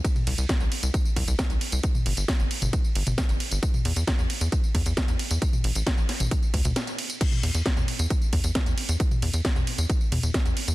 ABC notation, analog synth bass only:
X:1
M:4/4
L:1/16
Q:1/4=134
K:Em
V:1 name="Analog synth bass" clef=bass
z2 C,, C,, z C,, z C,, z2 C,, C,, z C,, z C,, | z2 G,,, G,,, z G,,, z G,,, z2 G,,, G,,, z G,,, z G,,, | z2 E,, E,, z E,, z E,, z2 E,, E,, z E,, z E,, | z2 A,,, A,,, z A,,, z A,,, z2 D,, D,, z4 |
z2 E,, E,, z E,, z E,, z2 E,, E,, z E,, z E,, | z2 E,, E,, z E,, z E,, z2 E,, E,, z E,, z E,, |]